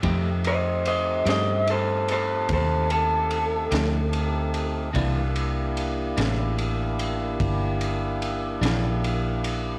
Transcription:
<<
  \new Staff \with { instrumentName = "Clean electric guitar" } { \time 12/8 \key f \major \tempo 4. = 49 r8 <c'' ees''>8 <c'' ees''>8 <c'' ees''>8 <a' c''>8 <a' c''>8 <a' c''>8 a'2~ a'8~ | a'8 r1 r4. | }
  \new Staff \with { instrumentName = "Tonewheel organ" } { \time 12/8 \key f \major <a c' ees' g'>1. | <bes d' e' g'>1. | }
  \new Staff \with { instrumentName = "Clean electric guitar" } { \time 12/8 \key f \major <f a ees' g'>8 r4 <f a ees' g'>8 r2 r8 <f a ees' g'>8 r4 | <c e bes d'>8 r4 <c e bes d'>8 r2 r8 <c e bes d'>8 r4 | }
  \new Staff \with { instrumentName = "Fingered electric bass" } { \clef bass \time 12/8 \key f \major f,4. g,4. ees,4. d,4. | c,4. a,,4. g,,4. bes,,4. | }
  \new DrumStaff \with { instrumentName = "Drums" } \drummode { \time 12/8 <bd cymr>8 cymr8 cymr8 <cymr sn>8 cymr8 cymr8 <bd cymr>8 cymr8 cymr8 <cymr sn>8 cymr8 cymr8 | <bd cymr>8 cymr8 cymr8 <cymr sn>8 cymr8 cymr8 <bd cymr>8 cymr8 cymr8 <cymr sn>8 cymr8 cymr8 | }
>>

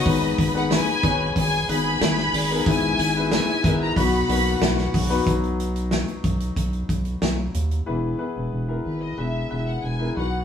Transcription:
<<
  \new Staff \with { instrumentName = "Violin section" } { \time 4/4 \key e \lydian \tempo 4 = 92 dis''8. fis''16 gis''4 gis''8 b''4. | gis''4 gis''8. ais''16 b''4. r8 | r1 | r4. b'16 dis''16 e''8. fis''16 gis''8 fis''8 | }
  \new Staff \with { instrumentName = "Violin section" } { \time 4/4 \key e \lydian <b' b''>2 <gis' gis''>2 | <e' e''>2 <fis' fis''>2 | r1 | r1 | }
  \new Staff \with { instrumentName = "Upright piano" } { \time 4/4 \key e \lydian <b dis' gis' b'>8 r16 <b dis' gis' b'>8 r16 <b dis' gis' cis''>8. r16 <b dis' gis' b'>4 r16 <b dis' gis' ais'>16 | <b e' gis' b'>8 r16 <b e' gis' b'>8 r16 <b e' gis' ais'>8 <b dis' fis' b'>8 <ais b dis' fis'>4 r16 <b dis' fis' b'>16 | r1 | <b e' gis' b'>8 <b e' gis' b'>8 r16 <b e' gis' ais'>8 r16 <b e' gis' b'>8 <b e' gis' b'>8 r16 <b e' gis' ais'>16 <b dis' fis' b'>8 | }
  \new Staff \with { instrumentName = "Upright piano" } { \clef bass \time 4/4 \key e \lydian gis,4. r2 r8 | gis,4. r8 b,4. r8 | <fis b dis'>8 r2. r8 | e4. r2 b,8 | }
  \new Staff \with { instrumentName = "Analog synth bass" } { \clef bass \time 4/4 \key e \lydian gis,,8 gis,,8. r16 gis,,8 gis,,8 gis,,8 gis,,8 gis,,8 | gis,,8 gis,,8. r16 gis,,8 b,,8 b,,8 b,,8 b,,8 | b,,4~ b,,16 r16 b,,8 b,,8 b,,8 b,,8 dis,8 | e,,8 r16 e,,16 e,,8 gis,,8 e,,8 e,,8 e,,8 b,,8 | }
  \new DrumStaff \with { instrumentName = "Drums" } \drummode { \time 4/4 <hho hhp bd>8 <hho hhp bd>8 <hho hhp sn>8 <hho hhp bd>8 <hho hhp bd>8 <hho hhp>8 <hho hhp sn>16 sn16 <hho hhp>8 | <hho hhp bd>8 <hho hhp>8 <hho hhp sn>8 <hho hhp bd>8 <hho hhp bd>8 <hho hhp>8 <hho hhp sn>16 sn16 <hho hhp bd>8 | <hh bd>16 hh16 hh16 hh16 sn16 hh16 <hh bd>16 hh16 <hh bd>16 hh16 <hh bd>16 hh16 sn8 hh16 hh16 | r4 r4 r4 r4 | }
>>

